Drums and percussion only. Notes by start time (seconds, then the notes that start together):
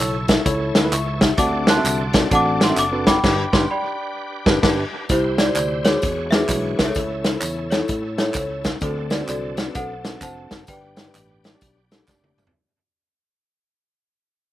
0.28 kick, snare, closed hi-hat, tambourine
0.46 kick, closed hi-hat, tambourine
0.75 snare, closed hi-hat, tambourine
0.92 clap, closed hi-hat, tambourine
1.21 kick, snare, closed hi-hat, tambourine
1.38 kick, closed hi-hat, tambourine
1.67 snare, closed hi-hat, tambourine
1.85 clap, closed hi-hat, tambourine
2.13 kick, snare, closed hi-hat, tambourine
2.31 kick, closed hi-hat, tambourine
2.61 snare, closed hi-hat, tambourine
2.77 clap, closed hi-hat, tambourine
3.07 kick, snare, closed hi-hat, tambourine
3.24 kick, snare, crash
3.53 kick, snare
4.46 kick, snare
4.63 kick, snare, crash
5.09 kick, closed hi-hat, tambourine
5.38 snare, closed hi-hat, tambourine
5.56 clap, closed hi-hat, tambourine
5.84 snare, closed hi-hat, tambourine
6.02 kick, closed hi-hat, tambourine
6.32 snare, closed hi-hat, tambourine
6.49 kick, clap, closed hi-hat, tambourine
6.79 kick, snare, closed hi-hat, tambourine
6.95 kick, closed hi-hat, tambourine
7.24 snare, closed hi-hat, tambourine
7.41 clap, closed hi-hat, tambourine
7.71 snare, closed hi-hat, tambourine
7.88 kick, closed hi-hat, tambourine
8.18 snare, closed hi-hat, tambourine
8.34 kick, clap, closed hi-hat, tambourine
8.64 kick, snare, closed hi-hat, tambourine
8.81 kick, closed hi-hat, tambourine
9.10 snare, closed hi-hat, tambourine
9.28 clap, closed hi-hat, tambourine
9.57 snare, closed hi-hat, tambourine
9.75 kick, closed hi-hat, tambourine
10.05 snare, closed hi-hat, tambourine
10.21 kick, clap, closed hi-hat, tambourine
10.51 kick, snare, closed hi-hat, tambourine
10.67 kick, closed hi-hat, tambourine
10.96 snare, closed hi-hat, tambourine
11.15 clap, closed hi-hat, tambourine
11.44 snare, closed hi-hat, tambourine
11.61 kick, closed hi-hat, tambourine
11.91 snare, closed hi-hat, tambourine
12.08 kick, snare, clap, tambourine
12.24 high tom
12.38 mid tom, tambourine
12.47 floor tom